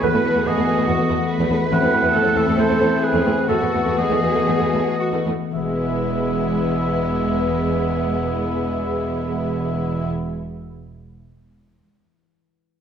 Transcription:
0.00 0.07 E2 medium
0.00 0.86 E3 soft
0.00 0.07 A3 medium
0.00 3.45 A3 soft
0.00 0.23 B3 soft
0.00 1.67 B3 soft
0.00 0.07 B3 soft
0.00 1.68 F#4 soft
0.00 0.45 B4 soft
0.00 0.48 B4 medium
0.13 0.17 E2 soft
0.13 0.17 A3 soft
0.13 0.19 B3 soft
0.24 0.29 E2 soft
0.24 0.29 A3 soft
0.24 1.08 B3 soft
0.24 0.29 B3 soft
0.35 0.39 E2 soft
0.35 0.39 A3 soft
0.35 0.39 B3 soft
0.45 0.49 E2 soft
0.45 0.50 A3 soft
0.45 0.50 B3 medium
0.45 0.87 G#4 soft
0.45 1.51 D#5 medium
0.57 0.61 E2 soft
0.57 0.61 A3 soft
0.57 0.61 B3 soft
0.66 0.71 E2 soft
0.66 0.71 A3 soft
0.66 0.71 B3 soft
0.66 1.49 F#4 soft
0.77 0.82 E2 soft
0.77 0.82 A3 medium
0.77 0.81 B3 medium
0.87 0.92 E2 soft
0.87 1.70 E3 soft
0.87 0.92 A3 soft
0.87 0.92 B3 soft
0.87 1.29 F#4 soft
0.98 1.03 E2 soft
0.98 1.03 A3 soft
0.98 1.02 B3 soft
1.09 1.13 E2 medium
1.09 1.13 A3 medium
1.09 1.73 B3 soft
1.09 1.13 B3 medium
1.30 2.12 A4 soft
1.30 2.12 B4 soft
1.40 1.44 E2 medium
1.40 1.45 A3 soft
1.40 1.44 B3 soft
1.50 1.55 E2 soft
1.50 1.55 A3 soft
1.50 1.54 B3 soft
1.50 1.73 F#4 soft
1.71 1.76 E2 medium
1.71 3.47 E3 soft
1.71 1.76 A3 soft
1.71 3.45 C4 soft
1.71 1.76 C4 soft
1.71 3.46 E4 soft
1.71 2.38 F#5 medium
1.81 1.87 E2 soft
1.81 1.87 A3 soft
1.81 1.85 C4 soft
1.92 1.97 E2 soft
1.92 1.97 A3 soft
1.92 2.78 C4 soft
1.92 1.96 C4 soft
2.02 2.08 E2 soft
2.02 2.08 A3 soft
2.02 2.06 C4 soft
2.13 2.19 E2 medium
2.13 2.19 A3 soft
2.13 2.17 C4 medium
2.13 3.01 A4 soft
2.13 3.01 A4 medium
2.24 2.30 E2 soft
2.24 2.30 A3 soft
2.24 2.28 C4 soft
2.35 2.40 E2 soft
2.35 2.41 A3 soft
2.35 2.40 C4 soft
2.35 3.24 E4 soft
2.35 2.58 E5 medium
2.46 2.52 E2 medium
2.46 2.52 A3 medium
2.46 2.51 C4 medium
2.57 2.63 E2 soft
2.57 5.55 A3 soft
2.57 2.63 A3 soft
2.57 2.62 C4 soft
2.57 3.05 C5 medium
2.69 2.74 E2 soft
2.69 2.74 A3 soft
2.69 2.73 C4 soft
2.80 2.84 E2 medium
2.80 2.85 A3 medium
2.80 3.51 C4 soft
2.80 2.85 C4 medium
3.02 3.49 G#4 soft
3.02 3.97 A4 soft
3.02 3.48 B4 medium
3.13 3.19 E2 medium
3.13 3.18 A3 soft
3.13 3.20 C4 soft
3.25 3.31 E2 soft
3.25 3.30 A3 soft
3.25 3.31 C4 soft
3.25 3.51 E4 soft
3.48 3.54 E2 medium
3.48 4.46 E3 soft
3.48 3.54 A3 medium
3.48 5.23 A3 soft
3.48 3.54 B3 soft
3.48 5.23 B3 soft
3.48 5.24 F#4 soft
3.48 3.97 F#4 soft
3.48 3.97 A4 medium
3.61 3.66 E2 soft
3.61 3.66 A3 soft
3.61 3.67 B3 soft
3.73 3.79 E2 soft
3.73 3.79 A3 soft
3.73 4.72 B3 soft
3.73 3.79 B3 soft
3.86 3.91 E2 soft
3.86 3.91 A3 soft
3.86 3.91 B3 soft
3.97 4.03 E2 medium
3.97 4.02 A3 medium
3.97 4.04 B3 medium
3.97 4.99 G#4 soft
3.97 5.24 D#5 medium
4.10 4.15 E2 soft
4.10 4.15 A3 soft
4.10 4.16 B3 soft
4.22 4.28 E2 soft
4.22 4.27 A3 soft
4.22 4.29 B3 soft
4.22 5.25 F#4 soft
4.34 4.40 E2 medium
4.34 4.39 A3 soft
4.34 4.41 B3 soft
4.47 4.52 E2 soft
4.47 5.52 E3 soft
4.47 4.53 A3 soft
4.47 4.53 B3 soft
4.60 4.65 E2 soft
4.60 4.65 A3 soft
4.60 4.65 B3 soft
4.72 4.78 E2 medium
4.72 4.78 A3 medium
4.72 5.66 B3 soft
4.72 4.79 B3 soft
4.99 5.08 F#4 soft
4.99 5.55 A4 soft
5.13 5.18 E2 soft
5.13 5.18 A3 soft
5.13 5.19 B3 soft
5.26 5.32 E2 soft
5.26 5.32 A3 soft
5.26 5.32 B3 soft
5.53 10.09 E1 soft
5.53 10.10 E2 soft
5.53 10.09 E3 soft
5.53 10.09 G#3 soft
5.53 10.10 G#3 soft
5.53 10.10 B3 soft
5.53 10.09 E4 soft
5.53 10.10 E5 soft
5.60 10.16 G#3 soft
5.67 10.23 B3 soft
5.74 10.30 E4 soft
5.81 10.37 B4 soft

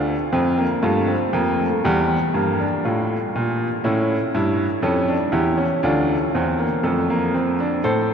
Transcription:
0.00 0.14 D2 medium
0.00 0.14 D4 medium
0.00 0.80 F4 medium
0.33 0.64 F2 medium
0.33 0.57 C4 medium
0.57 0.82 A#3 medium
0.83 1.14 G2 medium
0.83 1.07 A3 medium
0.83 1.80 F4 medium
1.08 1.32 C4 medium
1.33 1.64 F2 medium
1.33 1.57 A#3 medium
1.59 1.83 A3 medium
1.84 2.15 E2 medium
1.84 2.15 G3 medium
1.84 2.81 G4 medium
2.34 2.65 G2 medium
2.34 2.58 A#3 medium
2.60 3.81 D4 medium
2.85 3.16 A2 medium
2.85 3.81 F4 medium
3.35 3.66 A#2 medium
3.84 4.15 A2 medium
3.84 4.15 C#4 medium
3.84 4.33 E4 medium
4.35 4.65 G2 medium
4.35 4.65 E4 medium
4.82 5.13 F2 medium
4.82 5.07 C#4 medium
4.82 5.14 A4 medium
5.08 5.32 D4 medium
5.32 5.63 E2 medium
5.32 5.56 E4 medium
5.32 5.63 G4 medium
5.58 5.82 C#4 medium
5.83 6.14 D2 medium
5.83 6.14 D4 medium
5.83 6.81 F4 medium
6.35 6.65 E2 medium
6.35 6.58 C4 medium
6.59 6.83 A#3 medium
6.83 7.81 F2 medium
6.83 7.08 A3 medium
6.83 7.81 A4 medium
7.10 7.34 A#3 medium
7.34 7.58 C4 medium
7.60 7.84 D4 medium
7.84 8.14 A2 medium
7.84 8.14 A4 medium
7.84 8.14 C5 medium

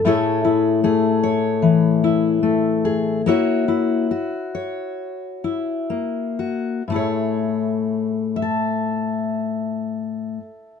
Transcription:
0.05 3.25 A2 medium
0.05 0.82 A3 medium
0.05 0.44 E4 medium
0.05 0.83 G#4 medium
0.05 1.23 C#5 medium
0.45 2.03 E4 soft
0.84 2.42 A3 medium
0.84 2.84 G#4 medium
1.23 3.28 C#5 medium
1.62 3.29 E3 medium
2.04 3.27 E4 soft
2.43 3.20 A3 medium
2.85 3.21 G#4 medium
3.26 4.11 A#3 medium
3.26 3.67 E4 medium
3.26 4.10 F#4 medium
3.26 4.53 C#5 medium
3.68 5.43 E4 soft
4.11 6.38 F#4 soft
4.55 6.82 C#5 soft
5.44 6.82 E4 soft
5.90 6.81 A#3 soft
6.39 6.82 F#4 soft
6.88 10.38 A2 medium
6.88 10.40 A3 soft
6.92 10.42 E4 soft
6.92 8.36 G#4 soft
6.92 8.42 C#5 soft
8.36 10.80 E5 medium
8.42 10.80 A5 medium

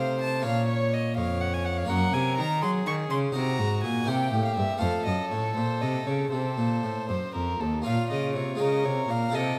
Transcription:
0.00 0.41 C3 soft
0.00 0.46 C3 medium
0.00 0.40 A3 soft
0.00 0.41 D#4 soft
0.00 0.42 C5 soft
0.00 0.46 C5 medium
0.00 0.20 F5 medium
0.21 0.45 A5 medium
0.41 1.18 A#2 medium
0.41 1.84 A#3 soft
0.41 1.84 C#4 soft
0.41 1.85 C#5 soft
0.41 1.16 C#5 medium
0.45 1.13 A#2 soft
0.45 0.68 F5 medium
0.69 0.95 C#5 medium
0.93 1.16 D#5 medium
1.17 1.89 F2 medium
1.17 1.85 F2 soft
1.17 1.88 C#5 medium
1.17 1.42 F5 medium
1.41 1.55 F#5 medium
1.53 1.66 G#5 medium
1.65 1.79 F#5 medium
1.77 1.91 F5 medium
1.85 2.11 A#3 soft
1.85 2.12 C#4 soft
1.85 3.30 C#5 soft
1.89 2.11 F#2 soft
1.89 2.12 F#2 medium
1.89 2.64 A#4 medium
1.89 2.15 F#5 medium
2.13 2.40 C3 medium
2.13 2.36 C3 soft
2.13 2.37 G#5 medium
2.37 2.64 D#3 medium
2.37 2.60 D#3 soft
2.37 2.61 A#5 medium
2.62 2.86 F#3 medium
2.62 2.84 F#3 soft
2.62 3.34 G#4 medium
2.62 2.70 C6 medium
2.86 3.08 D#3 soft
2.86 3.10 D#3 medium
2.86 2.94 C#6 medium
3.10 3.34 C#3 medium
3.10 3.33 C#3 medium
3.10 3.18 C6 medium
3.32 3.61 C3 medium
3.32 3.57 C3 soft
3.32 4.05 D#4 soft
3.32 4.10 F#4 medium
3.32 4.05 C5 soft
3.32 3.83 A#5 medium
3.59 3.85 G#2 medium
3.59 3.82 G#2 soft
3.83 4.07 A#2 medium
3.83 4.06 A#2 soft
3.83 4.09 G#5 medium
4.04 4.32 C3 medium
4.04 4.77 A#3 soft
4.04 4.78 E4 soft
4.04 4.79 C5 soft
4.04 4.44 G5 medium
4.08 4.30 C3 soft
4.08 4.81 G4 medium
4.33 4.41 A2 medium
4.33 4.55 A2 soft
4.45 4.55 F5 medium
4.56 4.65 G2 medium
4.56 4.80 G2 soft
4.56 4.80 E5 medium
4.77 5.03 A3 soft
4.77 7.80 F4 soft
4.77 7.81 C5 soft
4.77 5.05 F5 medium
4.82 4.90 F2 medium
4.82 5.04 F2 soft
4.82 6.29 A4 medium
5.06 5.14 F#2 medium
5.06 5.29 F#2 soft
5.06 5.30 D#5 medium
5.31 5.56 A2 medium
5.31 5.54 A2 soft
5.31 5.55 C#5 medium
5.56 5.64 A#2 soft
5.56 5.79 A#2 soft
5.56 5.82 C5 medium
5.81 6.06 C3 medium
5.81 6.04 C3 soft
5.81 6.08 D#5 medium
6.06 6.31 C#3 medium
6.06 6.30 C#3 soft
6.06 6.32 C#5 medium
6.32 6.59 C3 medium
6.32 6.55 C3 soft
6.32 7.03 A4 medium
6.32 7.58 C5 medium
6.58 6.81 A#2 soft
6.58 6.83 A#2 medium
6.84 7.07 A2 soft
6.84 6.92 A2 soft
7.09 7.32 F#2 soft
7.09 7.18 F#2 soft
7.09 7.33 C5 medium
7.34 7.58 F2 soft
7.34 7.60 F2 soft
7.34 7.62 A#4 medium
7.60 7.86 D#2 medium
7.60 7.84 D#2 soft
7.60 7.85 A4 soft
7.82 8.56 A#3 soft
7.82 8.56 F4 soft
7.82 8.62 F4 medium
7.82 8.57 C#5 soft
7.82 8.09 F5 medium
7.86 7.94 A#2 medium
7.86 8.09 A#2 soft
8.10 8.33 C#3 soft
8.10 8.37 C#3 medium
8.10 8.35 D#5 medium
8.35 8.57 C3 soft
8.35 8.60 C3 medium
8.35 8.60 C#5 medium
8.55 8.81 G#3 soft
8.55 9.29 F4 soft
8.55 9.31 C#5 soft
8.60 8.82 C#3 soft
8.60 8.86 C#3 soft
8.60 9.35 A#4 medium
8.60 8.87 D#5 medium
8.84 9.06 C3 soft
8.84 9.09 C3 soft
8.84 9.12 C#5 medium
9.09 9.31 A#2 soft
9.09 9.33 A#2 medium
9.09 9.36 F5 medium
9.29 9.59 C4 soft
9.29 9.59 F4 soft
9.29 9.59 A4 soft
9.33 9.56 C3 soft
9.33 9.58 C3 medium
9.33 9.59 A4 medium
9.33 9.59 D#5 medium

